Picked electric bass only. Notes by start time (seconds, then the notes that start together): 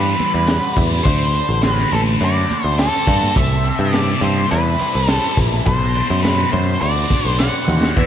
Already playing: G2
0.34 E2
0.77 E2
1.05 D2
1.49 A1
1.93 A1
2.21 F#2
2.64 D2
3.07 G2
3.36 C2
3.79 G2
4.21 G2
4.52 E2
4.95 C2
5.37 A#1
5.67 B1
6.10 F#2
6.53 F#2
6.82 D2
7.25 B1
7.69 D#2
7.96 E2